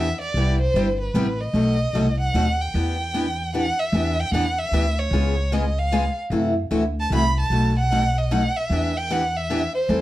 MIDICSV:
0, 0, Header, 1, 4, 480
1, 0, Start_track
1, 0, Key_signature, 1, "minor"
1, 0, Tempo, 397614
1, 424, Time_signature, 3, 2, 24, 8
1, 12088, End_track
2, 0, Start_track
2, 0, Title_t, "Violin"
2, 0, Program_c, 0, 40
2, 0, Note_on_c, 0, 76, 87
2, 235, Note_off_c, 0, 76, 0
2, 257, Note_on_c, 0, 74, 84
2, 697, Note_off_c, 0, 74, 0
2, 745, Note_on_c, 0, 72, 93
2, 1182, Note_off_c, 0, 72, 0
2, 1222, Note_on_c, 0, 71, 83
2, 1692, Note_on_c, 0, 75, 95
2, 1710, Note_off_c, 0, 71, 0
2, 2649, Note_off_c, 0, 75, 0
2, 2656, Note_on_c, 0, 78, 95
2, 3158, Note_on_c, 0, 79, 82
2, 3176, Note_off_c, 0, 78, 0
2, 4283, Note_off_c, 0, 79, 0
2, 4291, Note_on_c, 0, 78, 94
2, 4582, Note_on_c, 0, 76, 88
2, 4600, Note_off_c, 0, 78, 0
2, 5067, Note_on_c, 0, 79, 97
2, 5085, Note_off_c, 0, 76, 0
2, 5234, Note_off_c, 0, 79, 0
2, 5241, Note_on_c, 0, 78, 91
2, 5542, Note_on_c, 0, 76, 97
2, 5560, Note_off_c, 0, 78, 0
2, 6029, Note_on_c, 0, 73, 87
2, 6047, Note_off_c, 0, 76, 0
2, 6682, Note_on_c, 0, 75, 81
2, 6700, Note_off_c, 0, 73, 0
2, 6987, Note_on_c, 0, 77, 83
2, 7005, Note_off_c, 0, 75, 0
2, 7456, Note_off_c, 0, 77, 0
2, 8451, Note_on_c, 0, 81, 86
2, 8597, Note_off_c, 0, 81, 0
2, 8635, Note_on_c, 0, 83, 108
2, 8890, Note_off_c, 0, 83, 0
2, 8938, Note_on_c, 0, 81, 95
2, 9359, Note_off_c, 0, 81, 0
2, 9406, Note_on_c, 0, 78, 101
2, 9876, Note_on_c, 0, 75, 83
2, 9895, Note_off_c, 0, 78, 0
2, 10042, Note_on_c, 0, 78, 93
2, 10060, Note_off_c, 0, 75, 0
2, 10343, Note_on_c, 0, 76, 87
2, 10361, Note_off_c, 0, 78, 0
2, 10830, Note_on_c, 0, 79, 99
2, 10848, Note_off_c, 0, 76, 0
2, 11013, Note_on_c, 0, 78, 88
2, 11031, Note_off_c, 0, 79, 0
2, 11305, Note_on_c, 0, 76, 85
2, 11323, Note_off_c, 0, 78, 0
2, 11762, Note_off_c, 0, 76, 0
2, 11769, Note_on_c, 0, 72, 85
2, 12088, Note_off_c, 0, 72, 0
2, 12088, End_track
3, 0, Start_track
3, 0, Title_t, "Steel-string acoustic guitar"
3, 0, Program_c, 1, 25
3, 437, Note_on_c, 1, 48, 59
3, 440, Note_on_c, 1, 55, 64
3, 444, Note_on_c, 1, 59, 73
3, 446, Note_on_c, 1, 64, 61
3, 451, Note_on_c, 1, 67, 62
3, 687, Note_off_c, 1, 48, 0
3, 688, Note_off_c, 1, 55, 0
3, 690, Note_off_c, 1, 59, 0
3, 691, Note_off_c, 1, 64, 0
3, 694, Note_off_c, 1, 67, 0
3, 913, Note_on_c, 1, 48, 77
3, 917, Note_on_c, 1, 55, 83
3, 918, Note_on_c, 1, 59, 88
3, 922, Note_on_c, 1, 64, 86
3, 924, Note_on_c, 1, 67, 88
3, 1045, Note_off_c, 1, 48, 0
3, 1047, Note_off_c, 1, 55, 0
3, 1047, Note_off_c, 1, 59, 0
3, 1049, Note_off_c, 1, 64, 0
3, 1050, Note_off_c, 1, 67, 0
3, 1384, Note_on_c, 1, 48, 90
3, 1391, Note_on_c, 1, 55, 79
3, 1392, Note_on_c, 1, 59, 97
3, 1393, Note_on_c, 1, 64, 84
3, 1398, Note_on_c, 1, 67, 86
3, 1520, Note_off_c, 1, 48, 0
3, 1523, Note_off_c, 1, 55, 0
3, 1524, Note_off_c, 1, 59, 0
3, 1525, Note_off_c, 1, 64, 0
3, 1527, Note_off_c, 1, 67, 0
3, 1864, Note_on_c, 1, 54, 69
3, 1868, Note_on_c, 1, 47, 62
3, 1870, Note_on_c, 1, 57, 61
3, 1874, Note_on_c, 1, 63, 68
3, 1878, Note_on_c, 1, 66, 66
3, 2121, Note_off_c, 1, 54, 0
3, 2123, Note_off_c, 1, 47, 0
3, 2124, Note_off_c, 1, 57, 0
3, 2126, Note_off_c, 1, 63, 0
3, 2128, Note_off_c, 1, 66, 0
3, 2351, Note_on_c, 1, 47, 79
3, 2354, Note_on_c, 1, 54, 93
3, 2355, Note_on_c, 1, 57, 79
3, 2362, Note_on_c, 1, 63, 84
3, 2364, Note_on_c, 1, 66, 84
3, 2484, Note_off_c, 1, 47, 0
3, 2486, Note_off_c, 1, 54, 0
3, 2486, Note_off_c, 1, 57, 0
3, 2490, Note_off_c, 1, 63, 0
3, 2491, Note_off_c, 1, 66, 0
3, 2831, Note_on_c, 1, 47, 76
3, 2837, Note_on_c, 1, 54, 96
3, 2839, Note_on_c, 1, 57, 89
3, 2842, Note_on_c, 1, 63, 80
3, 2846, Note_on_c, 1, 66, 89
3, 2965, Note_off_c, 1, 47, 0
3, 2967, Note_off_c, 1, 54, 0
3, 2969, Note_off_c, 1, 57, 0
3, 2970, Note_off_c, 1, 63, 0
3, 2972, Note_off_c, 1, 66, 0
3, 3316, Note_on_c, 1, 52, 59
3, 3320, Note_on_c, 1, 59, 70
3, 3327, Note_on_c, 1, 62, 74
3, 3329, Note_on_c, 1, 67, 67
3, 3568, Note_off_c, 1, 52, 0
3, 3569, Note_off_c, 1, 59, 0
3, 3573, Note_off_c, 1, 62, 0
3, 3574, Note_off_c, 1, 67, 0
3, 3790, Note_on_c, 1, 52, 74
3, 3794, Note_on_c, 1, 59, 75
3, 3800, Note_on_c, 1, 67, 89
3, 3801, Note_on_c, 1, 62, 91
3, 3924, Note_off_c, 1, 52, 0
3, 3926, Note_off_c, 1, 59, 0
3, 3929, Note_off_c, 1, 62, 0
3, 3929, Note_off_c, 1, 67, 0
3, 4273, Note_on_c, 1, 52, 82
3, 4280, Note_on_c, 1, 59, 83
3, 4282, Note_on_c, 1, 62, 81
3, 4283, Note_on_c, 1, 67, 80
3, 4406, Note_off_c, 1, 52, 0
3, 4410, Note_off_c, 1, 59, 0
3, 4410, Note_off_c, 1, 62, 0
3, 4411, Note_off_c, 1, 67, 0
3, 4756, Note_on_c, 1, 52, 68
3, 4761, Note_on_c, 1, 59, 67
3, 4768, Note_on_c, 1, 62, 70
3, 4768, Note_on_c, 1, 67, 76
3, 5008, Note_off_c, 1, 52, 0
3, 5010, Note_off_c, 1, 59, 0
3, 5014, Note_off_c, 1, 62, 0
3, 5014, Note_off_c, 1, 67, 0
3, 5231, Note_on_c, 1, 52, 78
3, 5234, Note_on_c, 1, 59, 85
3, 5243, Note_on_c, 1, 62, 88
3, 5244, Note_on_c, 1, 67, 102
3, 5365, Note_off_c, 1, 52, 0
3, 5366, Note_off_c, 1, 59, 0
3, 5371, Note_off_c, 1, 62, 0
3, 5372, Note_off_c, 1, 67, 0
3, 5711, Note_on_c, 1, 52, 86
3, 5715, Note_on_c, 1, 59, 82
3, 5721, Note_on_c, 1, 62, 93
3, 5725, Note_on_c, 1, 67, 96
3, 5845, Note_off_c, 1, 52, 0
3, 5847, Note_off_c, 1, 59, 0
3, 5850, Note_off_c, 1, 62, 0
3, 5852, Note_off_c, 1, 67, 0
3, 6189, Note_on_c, 1, 49, 62
3, 6192, Note_on_c, 1, 56, 65
3, 6196, Note_on_c, 1, 59, 68
3, 6199, Note_on_c, 1, 65, 78
3, 6203, Note_on_c, 1, 68, 67
3, 6444, Note_off_c, 1, 49, 0
3, 6446, Note_off_c, 1, 56, 0
3, 6448, Note_off_c, 1, 59, 0
3, 6449, Note_off_c, 1, 65, 0
3, 6451, Note_off_c, 1, 68, 0
3, 6663, Note_on_c, 1, 49, 80
3, 6667, Note_on_c, 1, 56, 83
3, 6670, Note_on_c, 1, 59, 97
3, 6670, Note_on_c, 1, 65, 85
3, 6676, Note_on_c, 1, 68, 94
3, 6801, Note_off_c, 1, 49, 0
3, 6802, Note_off_c, 1, 56, 0
3, 6804, Note_off_c, 1, 59, 0
3, 6804, Note_off_c, 1, 65, 0
3, 6807, Note_off_c, 1, 68, 0
3, 7144, Note_on_c, 1, 49, 80
3, 7151, Note_on_c, 1, 56, 98
3, 7154, Note_on_c, 1, 59, 93
3, 7154, Note_on_c, 1, 65, 97
3, 7159, Note_on_c, 1, 68, 91
3, 7281, Note_off_c, 1, 49, 0
3, 7284, Note_off_c, 1, 56, 0
3, 7286, Note_off_c, 1, 59, 0
3, 7286, Note_off_c, 1, 65, 0
3, 7288, Note_off_c, 1, 68, 0
3, 7623, Note_on_c, 1, 48, 63
3, 7623, Note_on_c, 1, 52, 64
3, 7626, Note_on_c, 1, 57, 65
3, 7632, Note_on_c, 1, 66, 72
3, 7633, Note_on_c, 1, 64, 69
3, 7881, Note_off_c, 1, 48, 0
3, 7881, Note_off_c, 1, 52, 0
3, 7882, Note_off_c, 1, 57, 0
3, 7885, Note_off_c, 1, 66, 0
3, 7886, Note_off_c, 1, 64, 0
3, 8096, Note_on_c, 1, 48, 85
3, 8100, Note_on_c, 1, 52, 81
3, 8102, Note_on_c, 1, 57, 81
3, 8105, Note_on_c, 1, 64, 93
3, 8106, Note_on_c, 1, 66, 100
3, 8237, Note_off_c, 1, 48, 0
3, 8239, Note_off_c, 1, 52, 0
3, 8240, Note_off_c, 1, 57, 0
3, 8241, Note_off_c, 1, 64, 0
3, 8242, Note_off_c, 1, 66, 0
3, 8596, Note_on_c, 1, 48, 91
3, 8597, Note_on_c, 1, 52, 85
3, 8600, Note_on_c, 1, 64, 87
3, 8602, Note_on_c, 1, 57, 80
3, 8608, Note_on_c, 1, 66, 104
3, 8726, Note_off_c, 1, 48, 0
3, 8727, Note_off_c, 1, 52, 0
3, 8728, Note_off_c, 1, 64, 0
3, 8730, Note_off_c, 1, 57, 0
3, 8732, Note_off_c, 1, 66, 0
3, 9074, Note_on_c, 1, 54, 57
3, 9075, Note_on_c, 1, 47, 58
3, 9083, Note_on_c, 1, 63, 67
3, 9084, Note_on_c, 1, 57, 66
3, 9084, Note_on_c, 1, 66, 70
3, 9326, Note_off_c, 1, 47, 0
3, 9326, Note_off_c, 1, 54, 0
3, 9330, Note_off_c, 1, 63, 0
3, 9331, Note_off_c, 1, 57, 0
3, 9331, Note_off_c, 1, 66, 0
3, 9556, Note_on_c, 1, 47, 76
3, 9558, Note_on_c, 1, 54, 83
3, 9561, Note_on_c, 1, 57, 80
3, 9562, Note_on_c, 1, 63, 90
3, 9567, Note_on_c, 1, 66, 93
3, 9686, Note_off_c, 1, 47, 0
3, 9687, Note_off_c, 1, 54, 0
3, 9688, Note_off_c, 1, 57, 0
3, 9689, Note_off_c, 1, 63, 0
3, 9692, Note_off_c, 1, 66, 0
3, 10032, Note_on_c, 1, 47, 93
3, 10037, Note_on_c, 1, 54, 88
3, 10041, Note_on_c, 1, 57, 86
3, 10041, Note_on_c, 1, 63, 93
3, 10042, Note_on_c, 1, 66, 87
3, 10164, Note_off_c, 1, 47, 0
3, 10166, Note_off_c, 1, 54, 0
3, 10168, Note_off_c, 1, 57, 0
3, 10168, Note_off_c, 1, 63, 0
3, 10169, Note_off_c, 1, 66, 0
3, 10517, Note_on_c, 1, 52, 61
3, 10521, Note_on_c, 1, 59, 63
3, 10527, Note_on_c, 1, 62, 72
3, 10528, Note_on_c, 1, 67, 68
3, 10766, Note_off_c, 1, 52, 0
3, 10768, Note_off_c, 1, 59, 0
3, 10771, Note_off_c, 1, 62, 0
3, 10772, Note_off_c, 1, 67, 0
3, 10991, Note_on_c, 1, 52, 91
3, 10991, Note_on_c, 1, 59, 84
3, 10995, Note_on_c, 1, 62, 88
3, 10997, Note_on_c, 1, 67, 102
3, 11123, Note_off_c, 1, 52, 0
3, 11123, Note_off_c, 1, 59, 0
3, 11124, Note_off_c, 1, 62, 0
3, 11126, Note_off_c, 1, 67, 0
3, 11466, Note_on_c, 1, 52, 87
3, 11474, Note_on_c, 1, 59, 97
3, 11474, Note_on_c, 1, 62, 89
3, 11482, Note_on_c, 1, 67, 93
3, 11600, Note_off_c, 1, 52, 0
3, 11603, Note_off_c, 1, 62, 0
3, 11604, Note_off_c, 1, 59, 0
3, 11607, Note_off_c, 1, 67, 0
3, 11941, Note_on_c, 1, 55, 65
3, 11942, Note_on_c, 1, 52, 61
3, 11946, Note_on_c, 1, 60, 65
3, 11947, Note_on_c, 1, 64, 68
3, 11950, Note_on_c, 1, 69, 70
3, 12088, Note_off_c, 1, 52, 0
3, 12088, Note_off_c, 1, 55, 0
3, 12088, Note_off_c, 1, 60, 0
3, 12088, Note_off_c, 1, 64, 0
3, 12088, Note_off_c, 1, 69, 0
3, 12088, End_track
4, 0, Start_track
4, 0, Title_t, "Upright bass"
4, 0, Program_c, 2, 32
4, 0, Note_on_c, 2, 40, 88
4, 129, Note_off_c, 2, 40, 0
4, 412, Note_on_c, 2, 36, 85
4, 801, Note_off_c, 2, 36, 0
4, 894, Note_on_c, 2, 31, 80
4, 1307, Note_off_c, 2, 31, 0
4, 1374, Note_on_c, 2, 33, 71
4, 1787, Note_off_c, 2, 33, 0
4, 1852, Note_on_c, 2, 35, 80
4, 2241, Note_off_c, 2, 35, 0
4, 2333, Note_on_c, 2, 36, 76
4, 2747, Note_off_c, 2, 36, 0
4, 2823, Note_on_c, 2, 39, 75
4, 3233, Note_off_c, 2, 39, 0
4, 3308, Note_on_c, 2, 40, 87
4, 4460, Note_off_c, 2, 40, 0
4, 4736, Note_on_c, 2, 40, 88
4, 5125, Note_off_c, 2, 40, 0
4, 5207, Note_on_c, 2, 40, 74
4, 5623, Note_off_c, 2, 40, 0
4, 5689, Note_on_c, 2, 38, 78
4, 6105, Note_off_c, 2, 38, 0
4, 6165, Note_on_c, 2, 37, 89
4, 7326, Note_off_c, 2, 37, 0
4, 7606, Note_on_c, 2, 42, 82
4, 7998, Note_off_c, 2, 42, 0
4, 8096, Note_on_c, 2, 38, 75
4, 8508, Note_off_c, 2, 38, 0
4, 8574, Note_on_c, 2, 36, 77
4, 8987, Note_off_c, 2, 36, 0
4, 9055, Note_on_c, 2, 35, 80
4, 10210, Note_off_c, 2, 35, 0
4, 10499, Note_on_c, 2, 40, 81
4, 11651, Note_off_c, 2, 40, 0
4, 11937, Note_on_c, 2, 40, 86
4, 12088, Note_off_c, 2, 40, 0
4, 12088, End_track
0, 0, End_of_file